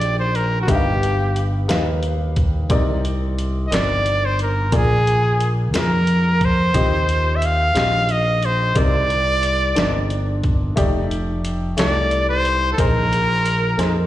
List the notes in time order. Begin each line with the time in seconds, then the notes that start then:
Already playing: A#1 D#3 D#4 G4 D5 F5 G5
0.01 closed hi-hat
0.19 C5
0.35 A#4, closed hi-hat
0.62 F#4
0.67 G1 G2 D#4 G4 B4 E5, kick, closed hi-hat
0.75 F5
1.03 closed hi-hat
1.36 closed hi-hat
1.68 D#2 D#4 G4 B4 F5, snare, closed hi-hat
2.03 closed hi-hat
2.36 kick, closed hi-hat
2.70 C2 C3 C4 D#4 A#4 D5, kick, closed hi-hat
3.05 closed hi-hat
3.39 closed hi-hat
3.67 C4 D#4 D#5
3.72 G1 A#4 D5, snare, closed hi-hat
4.06 closed hi-hat
4.25 C5
4.39 A#4, closed hi-hat
4.72 A#1 A#2 A#3 F4 G#4 D5, kick, closed hi-hat
5.07 closed hi-hat
5.40 closed hi-hat
5.73 F2 A#3 F4 G#4 A#4, snare, closed hi-hat
5.78 A#4
6.07 closed hi-hat
6.41 C5, kick, closed hi-hat
6.74 D#2 D#3 C4 F4 G4 D#5, kick, closed hi-hat
7.09 closed hi-hat
7.36 E5
7.42 F5, closed hi-hat
7.74 A#1 C4 F4 G4 D#5, snare, closed hi-hat
8.09 D#5, closed hi-hat
8.43 C5, closed hi-hat
8.75 C2 C3 C4 D#4 A#4 D5, kick, closed hi-hat
9.10 closed hi-hat
9.43 closed hi-hat
9.75 G1 C4 D4 A#4 D5, snare, closed hi-hat
9.82 D#4
10.10 closed hi-hat
10.44 kick, closed hi-hat
10.76 F1 A3 D#4 G4 D5, kick, closed hi-hat
11.11 closed hi-hat
11.45 closed hi-hat
11.77 C2 A3 D#4 G4 A4 D5, snare, closed hi-hat
12.11 closed hi-hat
12.29 C5
12.45 closed hi-hat
12.72 A4
12.78 A#1 A#2 A#3 D#4 G#4 A#4 C5, kick, closed hi-hat
13.13 closed hi-hat
13.46 closed hi-hat
13.77 F2 A#3 D#4 G#4 C5, snare, closed hi-hat